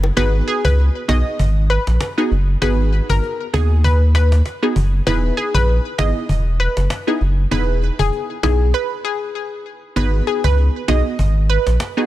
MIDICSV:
0, 0, Header, 1, 6, 480
1, 0, Start_track
1, 0, Key_signature, 5, "minor"
1, 0, Tempo, 612245
1, 132, Time_signature, 4, 2, 24, 8
1, 9455, End_track
2, 0, Start_track
2, 0, Title_t, "Synth pluck"
2, 0, Program_c, 0, 84
2, 133, Note_on_c, 0, 71, 105
2, 237, Note_off_c, 0, 71, 0
2, 373, Note_on_c, 0, 68, 82
2, 477, Note_off_c, 0, 68, 0
2, 508, Note_on_c, 0, 71, 91
2, 589, Note_off_c, 0, 71, 0
2, 853, Note_on_c, 0, 75, 83
2, 957, Note_off_c, 0, 75, 0
2, 1332, Note_on_c, 0, 71, 79
2, 1436, Note_off_c, 0, 71, 0
2, 2053, Note_on_c, 0, 71, 99
2, 2157, Note_off_c, 0, 71, 0
2, 2429, Note_on_c, 0, 70, 78
2, 2614, Note_off_c, 0, 70, 0
2, 2774, Note_on_c, 0, 68, 82
2, 2959, Note_off_c, 0, 68, 0
2, 3014, Note_on_c, 0, 71, 88
2, 3117, Note_off_c, 0, 71, 0
2, 3253, Note_on_c, 0, 71, 84
2, 3357, Note_off_c, 0, 71, 0
2, 3973, Note_on_c, 0, 71, 104
2, 4076, Note_off_c, 0, 71, 0
2, 4212, Note_on_c, 0, 68, 81
2, 4316, Note_off_c, 0, 68, 0
2, 4347, Note_on_c, 0, 71, 94
2, 4429, Note_off_c, 0, 71, 0
2, 4693, Note_on_c, 0, 75, 85
2, 4797, Note_off_c, 0, 75, 0
2, 5173, Note_on_c, 0, 71, 75
2, 5277, Note_off_c, 0, 71, 0
2, 5892, Note_on_c, 0, 71, 95
2, 5997, Note_off_c, 0, 71, 0
2, 6267, Note_on_c, 0, 68, 76
2, 6453, Note_off_c, 0, 68, 0
2, 6612, Note_on_c, 0, 68, 82
2, 6798, Note_off_c, 0, 68, 0
2, 6852, Note_on_c, 0, 71, 85
2, 6956, Note_off_c, 0, 71, 0
2, 7092, Note_on_c, 0, 68, 85
2, 7196, Note_off_c, 0, 68, 0
2, 7813, Note_on_c, 0, 71, 106
2, 7917, Note_off_c, 0, 71, 0
2, 8053, Note_on_c, 0, 68, 85
2, 8157, Note_off_c, 0, 68, 0
2, 8187, Note_on_c, 0, 71, 89
2, 8269, Note_off_c, 0, 71, 0
2, 8533, Note_on_c, 0, 75, 77
2, 8637, Note_off_c, 0, 75, 0
2, 9012, Note_on_c, 0, 71, 76
2, 9116, Note_off_c, 0, 71, 0
2, 9455, End_track
3, 0, Start_track
3, 0, Title_t, "Synth stab"
3, 0, Program_c, 1, 62
3, 130, Note_on_c, 1, 59, 93
3, 131, Note_on_c, 1, 63, 87
3, 133, Note_on_c, 1, 66, 84
3, 135, Note_on_c, 1, 68, 100
3, 800, Note_off_c, 1, 59, 0
3, 801, Note_off_c, 1, 63, 0
3, 802, Note_off_c, 1, 66, 0
3, 803, Note_off_c, 1, 68, 0
3, 849, Note_on_c, 1, 59, 78
3, 851, Note_on_c, 1, 63, 73
3, 852, Note_on_c, 1, 66, 71
3, 854, Note_on_c, 1, 68, 86
3, 1074, Note_off_c, 1, 59, 0
3, 1075, Note_off_c, 1, 63, 0
3, 1076, Note_off_c, 1, 66, 0
3, 1077, Note_off_c, 1, 68, 0
3, 1705, Note_on_c, 1, 59, 76
3, 1707, Note_on_c, 1, 63, 73
3, 1708, Note_on_c, 1, 66, 72
3, 1710, Note_on_c, 1, 68, 86
3, 1818, Note_off_c, 1, 59, 0
3, 1819, Note_off_c, 1, 63, 0
3, 1820, Note_off_c, 1, 66, 0
3, 1821, Note_off_c, 1, 68, 0
3, 2051, Note_on_c, 1, 59, 97
3, 2052, Note_on_c, 1, 63, 83
3, 2054, Note_on_c, 1, 66, 82
3, 2055, Note_on_c, 1, 68, 107
3, 2721, Note_off_c, 1, 59, 0
3, 2722, Note_off_c, 1, 63, 0
3, 2723, Note_off_c, 1, 66, 0
3, 2723, Note_off_c, 1, 68, 0
3, 2771, Note_on_c, 1, 59, 79
3, 2772, Note_on_c, 1, 63, 73
3, 2774, Note_on_c, 1, 66, 72
3, 2775, Note_on_c, 1, 68, 86
3, 2995, Note_off_c, 1, 59, 0
3, 2996, Note_off_c, 1, 63, 0
3, 2996, Note_off_c, 1, 66, 0
3, 2997, Note_off_c, 1, 68, 0
3, 3625, Note_on_c, 1, 59, 77
3, 3627, Note_on_c, 1, 63, 71
3, 3628, Note_on_c, 1, 66, 72
3, 3630, Note_on_c, 1, 68, 84
3, 3738, Note_off_c, 1, 59, 0
3, 3739, Note_off_c, 1, 63, 0
3, 3740, Note_off_c, 1, 66, 0
3, 3741, Note_off_c, 1, 68, 0
3, 3971, Note_on_c, 1, 59, 94
3, 3973, Note_on_c, 1, 63, 80
3, 3974, Note_on_c, 1, 64, 88
3, 3976, Note_on_c, 1, 68, 105
3, 4641, Note_off_c, 1, 59, 0
3, 4642, Note_off_c, 1, 63, 0
3, 4643, Note_off_c, 1, 64, 0
3, 4643, Note_off_c, 1, 68, 0
3, 4690, Note_on_c, 1, 59, 77
3, 4692, Note_on_c, 1, 63, 69
3, 4694, Note_on_c, 1, 64, 72
3, 4695, Note_on_c, 1, 68, 89
3, 4915, Note_off_c, 1, 59, 0
3, 4915, Note_off_c, 1, 63, 0
3, 4916, Note_off_c, 1, 64, 0
3, 4917, Note_off_c, 1, 68, 0
3, 5544, Note_on_c, 1, 59, 75
3, 5546, Note_on_c, 1, 63, 73
3, 5547, Note_on_c, 1, 64, 69
3, 5549, Note_on_c, 1, 68, 87
3, 5658, Note_off_c, 1, 59, 0
3, 5659, Note_off_c, 1, 63, 0
3, 5659, Note_off_c, 1, 64, 0
3, 5660, Note_off_c, 1, 68, 0
3, 5889, Note_on_c, 1, 59, 89
3, 5891, Note_on_c, 1, 63, 85
3, 5893, Note_on_c, 1, 64, 82
3, 5894, Note_on_c, 1, 68, 100
3, 6560, Note_off_c, 1, 59, 0
3, 6561, Note_off_c, 1, 63, 0
3, 6562, Note_off_c, 1, 64, 0
3, 6563, Note_off_c, 1, 68, 0
3, 6611, Note_on_c, 1, 59, 78
3, 6612, Note_on_c, 1, 63, 70
3, 6614, Note_on_c, 1, 64, 72
3, 6615, Note_on_c, 1, 68, 83
3, 6835, Note_off_c, 1, 59, 0
3, 6835, Note_off_c, 1, 63, 0
3, 6836, Note_off_c, 1, 64, 0
3, 6837, Note_off_c, 1, 68, 0
3, 7809, Note_on_c, 1, 59, 93
3, 7810, Note_on_c, 1, 63, 87
3, 7812, Note_on_c, 1, 66, 81
3, 7814, Note_on_c, 1, 68, 99
3, 8480, Note_off_c, 1, 59, 0
3, 8481, Note_off_c, 1, 63, 0
3, 8482, Note_off_c, 1, 66, 0
3, 8482, Note_off_c, 1, 68, 0
3, 8530, Note_on_c, 1, 59, 77
3, 8532, Note_on_c, 1, 63, 68
3, 8534, Note_on_c, 1, 66, 73
3, 8535, Note_on_c, 1, 68, 83
3, 8754, Note_off_c, 1, 59, 0
3, 8755, Note_off_c, 1, 63, 0
3, 8756, Note_off_c, 1, 66, 0
3, 8757, Note_off_c, 1, 68, 0
3, 9385, Note_on_c, 1, 59, 79
3, 9386, Note_on_c, 1, 63, 75
3, 9388, Note_on_c, 1, 66, 71
3, 9389, Note_on_c, 1, 68, 87
3, 9455, Note_off_c, 1, 59, 0
3, 9455, Note_off_c, 1, 63, 0
3, 9455, Note_off_c, 1, 66, 0
3, 9455, Note_off_c, 1, 68, 0
3, 9455, End_track
4, 0, Start_track
4, 0, Title_t, "Sub bass"
4, 0, Program_c, 2, 38
4, 0, Note_on_c, 2, 30, 98
4, 86, Note_off_c, 2, 30, 0
4, 133, Note_on_c, 2, 32, 97
4, 327, Note_off_c, 2, 32, 0
4, 506, Note_on_c, 2, 37, 90
4, 701, Note_off_c, 2, 37, 0
4, 854, Note_on_c, 2, 35, 92
4, 962, Note_off_c, 2, 35, 0
4, 1093, Note_on_c, 2, 32, 91
4, 1396, Note_off_c, 2, 32, 0
4, 1467, Note_on_c, 2, 34, 84
4, 1553, Note_off_c, 2, 34, 0
4, 1813, Note_on_c, 2, 30, 97
4, 2007, Note_off_c, 2, 30, 0
4, 2053, Note_on_c, 2, 32, 104
4, 2356, Note_off_c, 2, 32, 0
4, 2426, Note_on_c, 2, 32, 92
4, 2512, Note_off_c, 2, 32, 0
4, 2774, Note_on_c, 2, 39, 89
4, 3462, Note_off_c, 2, 39, 0
4, 3732, Note_on_c, 2, 30, 88
4, 3926, Note_off_c, 2, 30, 0
4, 3973, Note_on_c, 2, 28, 100
4, 4167, Note_off_c, 2, 28, 0
4, 4347, Note_on_c, 2, 34, 91
4, 4541, Note_off_c, 2, 34, 0
4, 4694, Note_on_c, 2, 32, 85
4, 4802, Note_off_c, 2, 32, 0
4, 4933, Note_on_c, 2, 28, 94
4, 5236, Note_off_c, 2, 28, 0
4, 5307, Note_on_c, 2, 30, 95
4, 5392, Note_off_c, 2, 30, 0
4, 5653, Note_on_c, 2, 30, 90
4, 5847, Note_off_c, 2, 30, 0
4, 5892, Note_on_c, 2, 28, 104
4, 6195, Note_off_c, 2, 28, 0
4, 6266, Note_on_c, 2, 28, 96
4, 6352, Note_off_c, 2, 28, 0
4, 6613, Note_on_c, 2, 35, 94
4, 6841, Note_off_c, 2, 35, 0
4, 7812, Note_on_c, 2, 32, 102
4, 8007, Note_off_c, 2, 32, 0
4, 8186, Note_on_c, 2, 37, 96
4, 8381, Note_off_c, 2, 37, 0
4, 8534, Note_on_c, 2, 35, 93
4, 8642, Note_off_c, 2, 35, 0
4, 8773, Note_on_c, 2, 32, 97
4, 9076, Note_off_c, 2, 32, 0
4, 9146, Note_on_c, 2, 34, 84
4, 9232, Note_off_c, 2, 34, 0
4, 9455, End_track
5, 0, Start_track
5, 0, Title_t, "Cajon"
5, 133, Note_on_c, 9, 36, 104
5, 211, Note_off_c, 9, 36, 0
5, 373, Note_on_c, 9, 38, 29
5, 452, Note_off_c, 9, 38, 0
5, 506, Note_on_c, 9, 36, 95
5, 585, Note_off_c, 9, 36, 0
5, 854, Note_on_c, 9, 36, 85
5, 854, Note_on_c, 9, 38, 113
5, 932, Note_off_c, 9, 38, 0
5, 933, Note_off_c, 9, 36, 0
5, 1093, Note_on_c, 9, 36, 97
5, 1171, Note_off_c, 9, 36, 0
5, 1333, Note_on_c, 9, 38, 28
5, 1411, Note_off_c, 9, 38, 0
5, 1467, Note_on_c, 9, 38, 91
5, 1546, Note_off_c, 9, 38, 0
5, 1572, Note_on_c, 9, 38, 115
5, 1650, Note_off_c, 9, 38, 0
5, 1813, Note_on_c, 9, 38, 30
5, 1892, Note_off_c, 9, 38, 0
5, 2053, Note_on_c, 9, 36, 104
5, 2131, Note_off_c, 9, 36, 0
5, 2293, Note_on_c, 9, 38, 28
5, 2371, Note_off_c, 9, 38, 0
5, 2427, Note_on_c, 9, 36, 96
5, 2505, Note_off_c, 9, 36, 0
5, 2533, Note_on_c, 9, 38, 39
5, 2612, Note_off_c, 9, 38, 0
5, 2774, Note_on_c, 9, 36, 92
5, 2774, Note_on_c, 9, 38, 113
5, 2853, Note_off_c, 9, 36, 0
5, 2853, Note_off_c, 9, 38, 0
5, 3013, Note_on_c, 9, 36, 97
5, 3091, Note_off_c, 9, 36, 0
5, 3252, Note_on_c, 9, 38, 108
5, 3331, Note_off_c, 9, 38, 0
5, 3387, Note_on_c, 9, 38, 96
5, 3466, Note_off_c, 9, 38, 0
5, 3492, Note_on_c, 9, 38, 68
5, 3571, Note_off_c, 9, 38, 0
5, 3732, Note_on_c, 9, 36, 92
5, 3810, Note_off_c, 9, 36, 0
5, 3973, Note_on_c, 9, 36, 102
5, 4052, Note_off_c, 9, 36, 0
5, 4214, Note_on_c, 9, 38, 30
5, 4292, Note_off_c, 9, 38, 0
5, 4347, Note_on_c, 9, 36, 92
5, 4425, Note_off_c, 9, 36, 0
5, 4453, Note_on_c, 9, 38, 39
5, 4531, Note_off_c, 9, 38, 0
5, 4693, Note_on_c, 9, 38, 112
5, 4694, Note_on_c, 9, 36, 93
5, 4772, Note_off_c, 9, 38, 0
5, 4773, Note_off_c, 9, 36, 0
5, 4933, Note_on_c, 9, 36, 96
5, 5011, Note_off_c, 9, 36, 0
5, 5172, Note_on_c, 9, 38, 28
5, 5251, Note_off_c, 9, 38, 0
5, 5306, Note_on_c, 9, 38, 91
5, 5385, Note_off_c, 9, 38, 0
5, 5411, Note_on_c, 9, 38, 115
5, 5490, Note_off_c, 9, 38, 0
5, 5652, Note_on_c, 9, 38, 31
5, 5730, Note_off_c, 9, 38, 0
5, 5892, Note_on_c, 9, 36, 107
5, 5971, Note_off_c, 9, 36, 0
5, 6132, Note_on_c, 9, 38, 29
5, 6210, Note_off_c, 9, 38, 0
5, 6266, Note_on_c, 9, 36, 88
5, 6344, Note_off_c, 9, 36, 0
5, 6371, Note_on_c, 9, 38, 39
5, 6450, Note_off_c, 9, 38, 0
5, 6612, Note_on_c, 9, 38, 110
5, 6613, Note_on_c, 9, 36, 88
5, 6690, Note_off_c, 9, 38, 0
5, 6692, Note_off_c, 9, 36, 0
5, 7812, Note_on_c, 9, 36, 107
5, 7891, Note_off_c, 9, 36, 0
5, 8053, Note_on_c, 9, 38, 30
5, 8131, Note_off_c, 9, 38, 0
5, 8186, Note_on_c, 9, 36, 94
5, 8264, Note_off_c, 9, 36, 0
5, 8292, Note_on_c, 9, 38, 39
5, 8370, Note_off_c, 9, 38, 0
5, 8533, Note_on_c, 9, 38, 114
5, 8534, Note_on_c, 9, 36, 90
5, 8611, Note_off_c, 9, 38, 0
5, 8612, Note_off_c, 9, 36, 0
5, 8773, Note_on_c, 9, 36, 96
5, 8851, Note_off_c, 9, 36, 0
5, 9012, Note_on_c, 9, 38, 27
5, 9090, Note_off_c, 9, 38, 0
5, 9146, Note_on_c, 9, 38, 91
5, 9225, Note_off_c, 9, 38, 0
5, 9252, Note_on_c, 9, 38, 116
5, 9330, Note_off_c, 9, 38, 0
5, 9455, End_track
6, 0, Start_track
6, 0, Title_t, "Drums"
6, 28, Note_on_c, 9, 60, 79
6, 106, Note_off_c, 9, 60, 0
6, 9455, End_track
0, 0, End_of_file